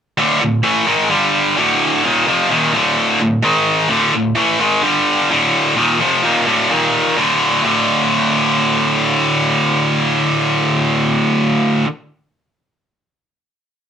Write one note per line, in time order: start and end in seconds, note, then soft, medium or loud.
0.18 0.40 D2 loud
0.18 0.40 A2 loud
0.18 0.41 D3 loud
0.41 0.60 D2 medium
0.41 0.60 A2 medium
0.63 0.86 A2 medium
0.63 0.87 E3 medium
0.63 0.87 A3 medium
0.86 1.09 G#2 medium
0.86 1.10 D#3 loud
0.86 1.10 G#3 medium
1.10 1.56 G2 medium
1.10 1.56 D3 medium
1.10 1.57 G3 loud
1.56 2.03 D2 loud
1.56 2.03 A2 loud
1.56 2.04 D3 loud
2.04 2.26 D#2 loud
2.04 2.27 A#2 loud
2.04 2.27 D#3 loud
2.27 2.49 F2 loud
2.27 2.50 C3 medium
2.27 2.50 F3 loud
2.49 2.73 D#2 medium
2.49 2.73 A#2 medium
2.49 2.74 D#3 medium
2.73 3.19 D2 medium
2.73 3.19 A2 medium
2.73 3.20 D3 loud
3.20 3.39 D2 medium
3.20 3.39 A2 medium
3.42 3.88 G#2 loud
3.42 3.89 D#3 loud
3.42 3.90 G#3 loud
3.89 4.12 D2 loud
3.89 4.12 A2 loud
3.89 4.13 D3 loud
4.13 4.32 D2 medium
4.13 4.32 A2 medium
4.35 4.59 A2 medium
4.35 4.59 E3 medium
4.35 4.60 A3 loud
4.60 4.82 G#2 medium
4.60 4.83 D#3 loud
4.60 4.83 G#3 medium
4.83 5.29 G2 medium
4.83 5.29 D3 loud
4.83 5.30 G3 medium
5.30 5.76 D2 loud
5.30 5.76 A2 loud
5.30 5.77 D3 loud
5.76 5.99 D#2 loud
5.76 5.99 A#2 loud
5.76 6.00 D#3 loud
6.00 6.23 F2 loud
6.00 6.23 C3 medium
6.00 6.23 F3 loud
6.23 6.46 D#2 loud
6.23 6.46 A#2 loud
6.23 6.47 D#3 loud
6.46 6.69 D2 medium
6.46 6.69 A2 medium
6.46 6.69 D3 medium
6.69 7.15 D#2 medium
6.69 7.16 A#2 medium
6.69 7.16 D#3 loud
7.16 7.61 D2 medium
7.16 7.63 A2 loud
7.16 7.63 D3 loud
7.62 11.84 D2 loud
7.62 11.86 A2 loud
7.62 11.88 D3 loud